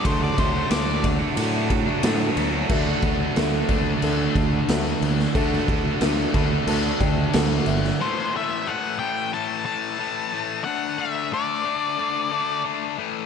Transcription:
<<
  \new Staff \with { instrumentName = "Lead electric guitar" } { \time 4/4 \key d \mixolydian \tempo 4 = 90 c''16 d''16 c''8 d''8 r2 r8 | r1 | r1 | c''8 e''8 fis''8 g''8 a''8 a''4. |
fis''8 e''8 d''2 r4 | }
  \new Staff \with { instrumentName = "Upright piano" } { \time 4/4 \key d \mixolydian << { r1 | r1 | r4. b''8 a''8 g''8 fis''8 e''8 | r1 |
r1 | } \\ { <d' fis' a'>4 <d' fis' a'>4 <d' fis' a'>4 <d' fis' a'>4 | <a d' fis' a'>4 <a d' fis' a'>4 <a d' fis' a'>4 <a d' fis' a'>4 | <a d' fis' a'>4 <a d' fis' a'>4 <a d' fis' a'>4 <a d' fis' a'>4 | r1 |
r1 | } >> }
  \new Staff \with { instrumentName = "Overdriven electric guitar" } { \time 4/4 \key d \mixolydian <d fis a d' fis'>8 <fis a d' fis'>8 <d fis a d' fis'>16 <a d' fis'>8 <a d' fis'>16 <fis a d' fis'>8 <fis a d' fis'>8 <d fis a d' fis'>16 <a d' fis'>16 <fis a d' fis'>16 <a d' fis'>16 | <d a d' fis'>1 | <d a d' fis'>1 | r1 |
r1 | }
  \new Staff \with { instrumentName = "Distorted electric guitar" } { \time 4/4 \key d \mixolydian <d fis a d'>8. <fis a d'>16 <d fis a d'>8 <d fis a d'>8. <fis a d'>8 <fis a d'>16 <d fis a d'>8 <d fis a d'>16 <fis a d'>16 | <d a d'>4. <d a d'>2~ <d a d'>8 | <d a d'>4. <d a d'>2~ <d a d'>8 | <a, e a>8 <a, e a>8 <a, e a>8 <a, e a>8 <a, e a>8 <a, e a>8 <a, e a>8 <a, e a>8 |
<d a d'>8 <d a d'>8 <d a d'>8 <d a d'>8 <d a d'>8 <d a d'>8 <d a d'>8 <a, e a>8 | }
  \new Staff \with { instrumentName = "Fingered electric bass" } { \clef bass \time 4/4 \key d \mixolydian d,8 d,8 d,4 a,4 a,8 d,8 | d,8 d,8 d,8 d,8 d,8 d,8 d,8 d,8 | d,8 d,8 d,8 d,8 d,8 d,8 d,8 g,,8 | r1 |
r1 | }
  \new DrumStaff \with { instrumentName = "Drums" } \drummode { \time 4/4 <bd cymr>8 <bd cymr>8 <cymr sn>8 <bd cymr>8 cymr8 <bd cymr>8 <cymr sn>8 cymr8 | <cymc bd>8 <cymc bd>8 <cymc sn>8 <cymc bd>8 cymc8 <cymc bd>8 <cymc sn>8 cymc16 sn16 | <cymc bd>16 sn16 <cymc bd>8 <cymc sn>8 <cymc bd>8 cymc8 <cymc bd>8 <cymc sn>8 cymc16 sn16 | r4 r4 r4 r4 |
r4 r4 r4 r4 | }
>>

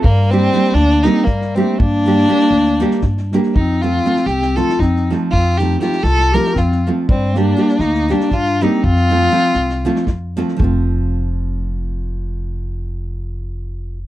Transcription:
<<
  \new Staff \with { instrumentName = "Violin" } { \time 7/8 \key f \mixolydian \tempo 4 = 119 bes8 c'4 d'8 ees'8 bes8 c'8 | d'2. r8 | ees'8 f'4 g'8 a'8 ees'8 r8 | f'8 g'8 g'8 a'8 bes'8 f'8 r8 |
c'8 d'4 ees'8 d'8 f'8 ees'8 | f'2~ f'8 r4 | r2. r8 | r2. r8 | }
  \new Staff \with { instrumentName = "Clarinet" } { \time 7/8 \key f \mixolydian g8 g4 bes8 c'8 g8 a8 | bes2. r8 | c'8 c'4 c'8 f'8 c'8 r8 | c'8 ees'8 ees'8 f'8 g'8 c'8 r8 |
g8 bes4 bes8 bes8 d'8 c'8 | c'2~ c'8 r4 | r2. r8 | r2. r8 | }
  \new Staff \with { instrumentName = "Nylon-string guitar" } { \time 7/8 \key f \mixolydian r8 <g bes d' g'>8 <g bes d' g'>8 r8 <g bes d' g'>8 r8 <g bes d' g'>8 | r8 <g bes d' g'>8 <g bes d' g'>8 r8 <g bes d' g'>8 r8 <g bes d' g'>8 | r8 <f a c' f'>8 <f a c' f'>8 r8 <f a c' f'>8 r8 <f a c' f'>8 | r8 <f a c' f'>8 <f a c' f'>8 r8 <f a c' f'>8 r8 <f a c' f'>8 |
r8 <g bes d' g'>8 <g bes d' g'>8 r8 <g bes d' g'>8 r8 <g bes d' g'>8 | r8 <f a c' f'>8 <f a c' f'>8 r8 <f a c' f'>8 r8 <f a c' f'>8 | <f a c' f'>2.~ <f a c' f'>8~ | <f a c' f'>2.~ <f a c' f'>8 | }
  \new Staff \with { instrumentName = "Upright bass" } { \clef bass \time 7/8 \key f \mixolydian g,4. d,4 g,4 | g,4. d,4 g,4 | f,4. c,4 f,4 | f,4. c,4 f,4 |
g,4. d,4 g,4 | f,4. c,4 f,4 | f,,2.~ f,,8~ | f,,2.~ f,,8 | }
  \new DrumStaff \with { instrumentName = "Drums" } \drummode { \time 7/8 bd8 sn8 sn16 sn16 sn16 sn16 sn16 sn16 <bd sn>16 sn16 sn8 | bd8 sn16 sn16 sn16 sn16 sn16 sn16 sn16 sn16 <bd sn>16 sn16 sn16 sn16 | bd8 sn8 sn16 sn16 sn16 sn16 sn16 sn16 <bd sn>16 sn16 sn8 | bd8 sn8 sn16 sn16 sn16 sn16 sn16 sn16 <bd sn>16 sn8. |
bd8 sn8 sn16 sn16 sn16 sn16 sn16 sn16 <bd sn>16 sn16 sn8 | bd16 sn16 sn16 sn16 sn8 sn16 sn16 sn16 sn16 <bd sn>8 sn16 sn16 | bd4. r4 r4 | r4. r4 r4 | }
>>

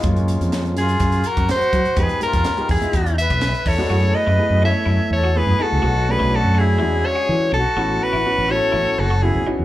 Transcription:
<<
  \new Staff \with { instrumentName = "Soprano saxophone" } { \time 4/4 \key ges \lydian \tempo 4 = 124 r4. aes'4 bes'8 c''4 | ces''8 bes'4 aes'4 e''4 des''8~ | \key fis \minor des''8 dis''4 e''4 cis''8 b'8 a'8~ | a'8 b'8 a'8 gis'4 cis''4 a'8~ |
a'8 b'4 cis''4 a'8 gis'8 r8 | }
  \new Staff \with { instrumentName = "Flute" } { \time 4/4 \key ges \lydian r4. f'4 ges'8 ges'4 | aes'8 f'4 fes'4 b'4 a'8~ | \key fis \minor a'8 b'4 cis''4 a'8 gis'8 fis'8~ | fis'8 gis'8 fis'8 e'4 gis'4 fis'8~ |
fis'8 fis'4 a'4 fis'8 e'8 r8 | }
  \new Staff \with { instrumentName = "Clean electric guitar" } { \time 4/4 \key ges \lydian r1 | r1 | \key fis \minor fis'8 r16 e'8 r16 cis'8 e'8 r16 fis'8 r16 dis'8 | fis'8 r16 e'8 r16 cis'8 e'8 r16 fis'8 r16 d'8 |
fis'8 r16 e'8 r16 cis'8 e'8 r16 fis'8 r16 dis'8 | }
  \new Staff \with { instrumentName = "Grand piano" } { \time 4/4 \key ges \lydian <aes bes des' f'>4. r2 r8 | <aes ces' ees' g'>16 r16 <aes ces' ees' g'>8 r16 <aes ces' ees' g'>16 r16 <aes ces' ees' f'>16 r4. r16 <gis b d' fis'>16 | \key fis \minor <a b e' gis'>8. r16 <a b e' gis'>16 r16 <a b e' a'>4 r8 <a b e' gis'>16 r16 <a b e' gis'>8 | r8 <a cis' d' fis'>4. <gis cis' d' fis'>4. r8 |
<b cis' e' fis'>8. r16 <b cis' e' fis'>16 r16 <b cis' e' fis'>4 r8 <b cis' e' fis'>16 r16 <b cis' e' fis'>8 | }
  \new Staff \with { instrumentName = "Fretless electric bass" } { \clef bass \time 4/4 \key ges \lydian ges,8. f,8. ges,8 ges,8 r16 ges,16 r8 ges16 r16 | f,16 r8 f,16 r8 f,16 r16 e,8. b,,8 r16 e,16 r16 | \key fis \minor fis,8 r16 fis,16 r16 fis,8 r16 fis,16 r16 e,8. fis,16 r16 cis,16 | b,,8. b,,8 fis,8. e,8 r8 e8 b,,16 r16 |
a,,8 r16 a,,16 r16 a,,8 r16 a,,16 r16 fis,,8. a,,16 r16 e,16 | }
  \new DrumStaff \with { instrumentName = "Drums" } \drummode { \time 4/4 <hh bd>16 hh16 hh16 hh16 <hh sn>16 hh16 <hh sn>16 hh16 <hh bd>16 hh16 hh16 <hh bd>16 <hh sn>16 hh16 <hh bd>16 hh16 | <hh bd>16 hh16 hh16 <hh bd sn>16 <hh sn>16 hh16 <hho bd>16 hh16 <hh bd>16 hh16 hh16 <hh bd>16 <hh sn>16 <hh sn>16 <hho bd>16 sn16 | r4 r4 r4 r4 | r4 r4 r4 r4 |
r4 r4 r4 r4 | }
>>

